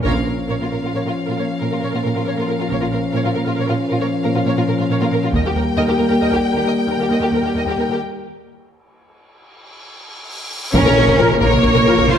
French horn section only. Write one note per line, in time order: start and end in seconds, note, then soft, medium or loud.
0.04 5.29 F3 soft
0.04 5.29 C#4 soft
5.35 7.98 G3 medium
5.35 7.98 A#3 soft
11.19 11.27 F3 medium
11.19 11.27 F4 medium
11.87 11.95 F3 medium
11.87 11.95 F4 medium